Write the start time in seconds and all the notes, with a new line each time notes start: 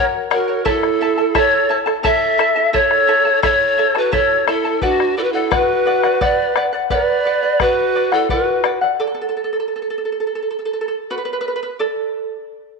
Already playing: A#4 C#5 F#5
0.31 F#4 A#4 C#5 F#5, bombo rim
0.48 C#5 F#5
0.65 E4 A4 C#5 E5 A5, bombo low
0.83 bombo rim
1.01 E4 A4 E5 A5
1.17 E4 A4 A5
1.35 E4 A4 C#5 E5 A5, bombo rim, bombo low
1.39 A4
1.69 E4 A4 E5 A5
1.86 E4 A4 A5, bombo rim
2.03 E4 A4 C#5 E5 A5, bombo low
2.38 E4 A4 E5 A5, bombo rim
2.56 E4 A4 A5
2.73 E4 A4 C#5 E5 A5, bombo low
2.91 bombo rim
3.07 E4 A4 E5 A5
3.25 E4 A4 A5
3.43 E4 A4 C#5 E5 A5, bombo rim, bombo low
3.77 E4 A4 E5 A5
3.95 E4 F#4 A4 B4 A5, bombo rim
4.12 E4 A4 C#5 E5 A5, bombo low
4.47 E4 A4 E5 A5, bombo rim
4.65 E4 A4 A5
4.82 D4 F#4 B4 D5 F#5, bombo low
5.00 bombo rim
5.17 E4 A4 B4 D5 F#5
5.23 F#4 B4
5.31 E4 A4 F#5
5.36 D5
5.51 F#4 B4 D5 F#5, bombo rim, bombo low
5.86 B4 D5 F#5
6.03 D5 F#5, bombo rim
6.21 B4 D5 F#5, bombo low
6.25 B4
6.56 B4 D5 F#5, bombo rim
6.73 D5 F#5
6.90 B4 D5 F#5, bombo low
7.25 B4 D5 F#5, bombo rim
7.43 D5 F#5
7.60 F#4 B4 D5 F#5, bombo rim, bombo low
7.95 B4 D5 F#5
8.12 E4 A4 D5 F#5, bombo rim
8.29 F#4 B4 D5 F#5, bombo low
8.64 B4 D5 F#5, bombo rim
8.81 D5 F#5, bombo rim
9.00 A4 D5
9.07 A4
9.14 A4
9.22 A4
9.29 A4
9.37 A4
9.44 A4
9.53 A4
9.60 A4
9.68 A4
9.76 A4
9.82 A4
9.90 A4
9.98 A4
10.05 A4
10.12 A4
10.20 A4
10.27 A4
10.35 A4
10.43 A4
10.51 A4
10.59 A4
10.65 A4
10.73 A4
10.81 A4
10.88 A4
11.10 F#4 B4
11.18 B4
11.25 B4
11.33 B4
11.41 B4
11.48 B4
11.56 B4
11.63 B4
11.79 A4 D5